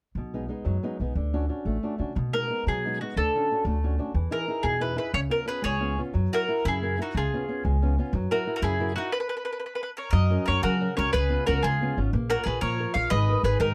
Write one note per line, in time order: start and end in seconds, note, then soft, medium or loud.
0.15 0.48 B1 medium
0.15 0.50 B2 soft
0.34 0.47 G#3 soft
0.34 0.48 B3 soft
0.34 0.48 D#4 soft
0.49 0.76 G#3 soft
0.49 0.77 B3 soft
0.49 0.77 D#4 soft
0.65 0.77 F#2 medium
0.65 0.98 F#3 soft
0.83 0.99 G#3 soft
0.83 0.99 B3 soft
0.83 1.00 D#4 soft
1.00 1.10 B1 soft
1.00 1.13 G#3 soft
1.00 1.13 B3 soft
1.00 1.13 D#4 soft
1.15 1.48 D2 medium
1.15 1.49 D3 medium
1.33 1.48 C#4 soft
1.33 1.48 D4 soft
1.33 1.48 F#4 soft
1.49 1.76 C#4 soft
1.49 1.76 D4 soft
1.49 1.76 F#4 soft
1.65 1.77 A1 medium
1.65 1.99 A3 soft
1.83 1.97 C#4 soft
1.83 1.97 D4 soft
1.83 1.98 F#4 soft
1.98 2.10 D3 soft
1.98 2.12 C#4 soft
1.98 2.12 D4 soft
1.98 2.12 F#4 soft
2.15 2.49 B2 soft
2.15 2.28 B2 medium
2.33 2.49 G#3 soft
2.33 2.49 B3 soft
2.33 2.49 D#4 soft
2.33 2.64 A#4 medium
2.50 2.77 G#3 soft
2.50 2.78 B3 soft
2.50 2.77 D#4 soft
2.67 2.99 B2 medium
2.67 2.99 F#3 medium
2.67 2.99 G#4 medium
2.85 3.00 G#3 soft
2.85 3.00 B3 soft
2.85 3.00 D#4 soft
3.01 3.14 G#3 soft
3.01 3.14 B3 soft
3.01 3.14 D#4 soft
3.01 3.15 F#4 soft
3.16 3.28 D2 medium
3.16 3.49 D3 medium
3.16 3.62 A4 medium
3.36 3.50 C#4 soft
3.36 3.51 D4 soft
3.36 3.51 F#4 soft
3.51 3.77 C#4 soft
3.51 3.78 D4 soft
3.51 3.78 F#4 soft
3.65 3.97 D2 medium
3.65 3.98 A3 medium
3.84 3.97 C#4 soft
3.84 3.97 D4 soft
3.84 3.98 F#4 soft
3.99 4.11 C#4 soft
3.99 4.11 D4 soft
3.99 4.12 F#4 soft
4.14 4.26 E2 medium
4.14 4.47 E3 medium
4.31 4.47 D#4 soft
4.31 4.47 E4 soft
4.31 4.47 G#4 soft
4.31 4.65 A#4 medium
4.48 4.75 D#4 soft
4.48 4.75 E4 soft
4.48 4.75 G#4 soft
4.63 4.96 E2 medium
4.63 4.96 B2 medium
4.63 4.80 G#4 medium
4.80 4.95 D#4 medium
4.80 4.95 E4 soft
4.80 4.95 G#4 medium
4.80 4.96 B4 medium
4.96 5.09 D#4 soft
4.96 5.10 E4 soft
4.96 5.10 G#4 medium
4.96 5.13 B4 medium
5.13 5.25 C#2 medium
5.13 5.47 C#3 medium
5.13 5.19 C#5 loud
5.29 5.44 B3 soft
5.29 5.44 C#4 soft
5.29 5.44 F4 soft
5.29 5.47 A#4 medium
5.45 5.74 B3 soft
5.45 5.74 C#4 soft
5.45 5.74 F4 soft
5.45 5.63 G#4 medium
5.45 5.63 B4 medium
5.62 5.97 C#2 medium
5.62 5.97 G#3 medium
5.62 6.00 G#4 medium
5.62 6.00 C#5 medium
5.81 5.97 B3 soft
5.81 5.97 C#4 soft
5.81 5.98 F4 soft
5.98 6.11 B3 soft
5.98 6.12 C#4 soft
5.98 6.12 F4 soft
6.14 6.26 F#2 medium
6.14 6.48 F#3 medium
6.32 6.47 E4 soft
6.32 6.48 F#4 soft
6.32 6.63 F#4 medium
6.32 6.48 A#4 soft
6.32 6.64 A#4 medium
6.48 6.76 E4 soft
6.48 6.76 F#4 soft
6.48 6.77 A#4 soft
6.65 6.98 F#2 medium
6.65 6.98 C#3 medium
6.65 6.97 E4 medium
6.65 6.98 G#4 medium
6.82 6.97 E4 soft
6.82 6.98 F#4 soft
6.82 6.98 A#4 soft
6.99 7.15 D#4 soft
6.99 7.12 E4 soft
6.99 7.12 F#4 soft
6.99 7.16 F#4 soft
6.99 7.12 A#4 soft
7.15 7.26 C#2 medium
7.15 7.48 C#3 medium
7.15 7.62 F4 soft
7.15 7.62 G#4 medium
7.34 7.47 B3 soft
7.34 7.48 C#4 soft
7.34 7.48 F4 soft
7.48 7.75 B3 soft
7.48 7.76 C#4 soft
7.48 7.76 F4 soft
7.65 7.97 C#2 medium
7.65 7.97 G#3 medium
7.82 7.97 B3 soft
7.82 7.98 C#4 soft
7.82 7.98 F4 soft
7.98 8.11 B3 soft
7.98 8.11 C#4 soft
7.98 8.11 F4 soft
8.13 8.25 F#2 medium
8.13 8.47 F#3 medium
8.31 8.46 E4 soft
8.31 8.46 F#4 soft
8.31 8.55 F#4 medium
8.31 8.55 A#4 medium
8.31 8.46 A#4 soft
8.47 8.74 E4 soft
8.47 8.74 F#4 soft
8.47 8.74 A#4 soft
8.56 8.62 F#4 medium
8.56 8.63 A#4 soft
8.62 8.95 F#2 medium
8.62 8.96 C#3 medium
8.62 8.94 E4 medium
8.62 8.95 G#4 medium
8.80 8.94 E4 soft
8.80 8.95 F#4 soft
8.80 8.96 A#4 medium
8.96 9.12 D#4 soft
8.96 9.09 E4 soft
8.96 9.11 F#4 medium
8.96 9.09 F#4 soft
8.96 9.10 A#4 soft
9.12 9.19 B4 medium
9.20 9.28 B4 medium
9.29 9.36 B4 medium
9.37 9.43 B4 soft
9.45 9.51 B4 medium
9.53 9.58 B4 medium
9.60 9.65 B4 soft
9.66 9.74 B4 soft
9.75 9.82 B4 medium
9.83 9.89 B4 medium
9.97 10.09 A#4 soft
9.97 10.12 C#5 medium
10.11 10.35 F#2 loud
10.11 10.47 F#3 medium
10.11 10.44 A#4 medium
10.11 10.45 D#5 medium
10.30 10.47 C#4 soft
10.30 10.47 F#4 soft
10.30 10.48 A#4 soft
10.46 10.58 F#2 medium
10.46 10.75 C#4 soft
10.46 10.75 F#4 soft
10.46 10.62 A#4 medium
10.46 10.76 A#4 soft
10.46 10.63 C#5 medium
10.62 10.95 C#3 medium
10.62 10.86 F#3 medium
10.62 10.95 F#4 medium
10.62 10.96 A#4 medium
10.81 10.96 C#4 medium
10.81 10.96 F#4 soft
10.81 10.97 A#4 medium
10.97 11.08 C#2 medium
10.97 11.10 C#4 soft
10.97 11.10 F#4 soft
10.97 11.11 A#4 medium
10.97 11.13 A#4 medium
10.97 11.12 C#5 medium
11.13 11.36 C#2 medium
11.13 11.46 C#3 medium
11.13 11.45 G#4 medium
11.13 11.44 B4 medium
11.29 11.45 B3 soft
11.29 11.45 C#4 soft
11.29 11.46 F4 medium
11.46 11.58 C#2 medium
11.46 11.74 B3 soft
11.46 11.73 C#4 soft
11.46 11.74 F4 medium
11.46 11.62 F#4 medium
11.46 11.63 A#4 medium
11.63 11.85 C#3 medium
11.63 11.96 G#3 medium
11.63 11.98 F4 medium
11.63 11.98 G#4 medium
11.81 11.96 B3 medium
11.81 11.96 C#4 soft
11.81 11.96 F4 medium
11.97 12.07 G#1 medium
11.97 12.10 B3 soft
11.97 12.10 C#4 soft
11.97 12.10 F4 medium
12.13 12.34 A#1 medium
12.13 12.45 A#3 medium
12.30 12.45 F4 soft
12.30 12.43 F#4 medium
12.30 12.44 A#4 medium
12.30 12.45 A#4 soft
12.30 12.46 C#5 medium
12.44 12.56 A#1 medium
12.44 12.73 F4 soft
12.44 12.59 G#4 medium
12.44 12.73 A#4 soft
12.44 12.61 B4 medium
12.44 12.73 C#5 medium
12.61 12.83 A#2 medium
12.61 12.94 F3 medium
12.61 12.92 A#4 medium
12.61 12.92 C#5 medium
12.79 12.95 F4 soft
12.79 12.94 A#4 soft
12.79 12.95 C#5 medium
12.94 13.05 A#1 medium
12.94 13.08 F4 soft
12.94 13.08 A#4 soft
12.94 13.09 C#5 medium
12.94 13.08 C#5 soft
12.94 13.09 F5 medium
13.10 13.33 G#1 loud
13.10 13.44 G#3 medium
13.10 13.42 B4 medium
13.10 13.42 D#5 medium
13.29 13.43 G#4 soft
13.29 13.43 A#4 soft
13.29 13.44 B4 soft
13.43 13.54 G#1 medium
13.43 13.71 G#4 soft
13.43 13.59 G#4 medium
13.43 13.71 A#4 soft
13.43 13.59 B4 medium
13.43 13.72 B4 soft
13.60 13.74 G#2 medium
13.60 13.74 D#3 medium
13.60 13.74 D#4 medium
13.60 13.74 A#4 medium